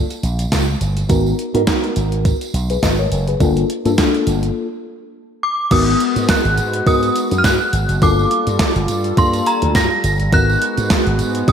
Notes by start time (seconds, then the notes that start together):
0.10 closed hi-hat, tambourine
0.23 A#1, closed hi-hat, tambourine
0.39 closed hi-hat, tambourine
0.52 C#2, kick, snare, clap, closed hi-hat, tambourine
0.81 G1, closed hi-hat, tambourine
0.97 closed hi-hat, tambourine
1.09 G#1 B3 D#4 F#4 A#4, kick, closed hi-hat, tambourine
1.26 tambourine
1.39 closed hi-hat
1.54 G#2 B3 D#4 F#4 A#4, closed hi-hat
1.67 B3 D#4 F#4 A#4, kick, snare, clap, closed hi-hat, tambourine
1.84 closed hi-hat
1.96 G#1, closed hi-hat, tambourine
2.12 closed hi-hat
2.25 kick, closed hi-hat, tambourine
2.41 closed hi-hat, tambourine
2.54 B1, closed hi-hat, tambourine
2.70 G#4 B4, closed hi-hat, tambourine
2.83 G#1 B4 D#5, kick, snare, clap, closed hi-hat, tambourine
2.99 A#4 C#5
3.12 F#1, closed hi-hat, tambourine
3.28 G#4 B4, closed hi-hat
3.40 G1 A#3 D4 F4 A4, kick, closed hi-hat, tambourine
3.57 closed hi-hat
3.70 closed hi-hat
3.85 G2 A#3 D4 F4 A4, closed hi-hat, tambourine
3.98 A#3 D4 F4 A4, kick, snare, clap, closed hi-hat, tambourine
4.14 closed hi-hat
4.27 G1, closed hi-hat, tambourine
4.43 closed hi-hat
5.43 D6
5.71 G#1 G#3 B3 D#4 F#4 A#4 D#6, kick, closed hi-hat, crash, tambourine
6.00 closed hi-hat
6.16 G#2, closed hi-hat, tambourine
6.29 F#6, kick, snare, clap, closed hi-hat, tambourine
6.45 G#1, closed hi-hat
6.58 G#2, closed hi-hat, tambourine
6.73 closed hi-hat
6.86 G#2 B3 D#4 F#4 A#4 D#6, kick, closed hi-hat, tambourine
7.02 closed hi-hat, tambourine
7.15 closed hi-hat, tambourine
7.31 F#2, closed hi-hat, tambourine
7.38 F6
7.44 G#2 F#6, kick, snare, clap, closed hi-hat, tambourine
7.73 G#1, closed hi-hat, tambourine
7.89 F#1, closed hi-hat, tambourine
8.02 G1 G3 A#3 D4 F4 A4 D6, kick, closed hi-hat, tambourine
8.19 tambourine
8.31 closed hi-hat
8.47 G2, closed hi-hat, tambourine
8.59 kick, snare, clap, closed hi-hat, tambourine
8.76 G1, closed hi-hat
8.88 G2, closed hi-hat, tambourine
9.04 closed hi-hat
9.17 G2 A#3 D4 F4 A4 C6, kick, closed hi-hat, tambourine
9.33 closed hi-hat, tambourine
9.46 A#5, closed hi-hat, tambourine
9.62 D2, closed hi-hat
9.75 G2 A#6, kick, snare, clap, closed hi-hat, tambourine
10.04 G1, closed hi-hat, tambourine
10.20 G1, closed hi-hat
10.32 G#1 G#3 B3 D#4 F#4 A#4 F#6, kick, closed hi-hat, tambourine
10.49 tambourine
10.62 closed hi-hat
10.77 G#2, closed hi-hat, tambourine
10.90 kick, snare, clap, closed hi-hat, tambourine
11.07 G#1, closed hi-hat
11.19 G#2, closed hi-hat, tambourine
11.35 closed hi-hat
11.47 G#2 B3 D#4 F#4 G4 D#6, kick, closed hi-hat, tambourine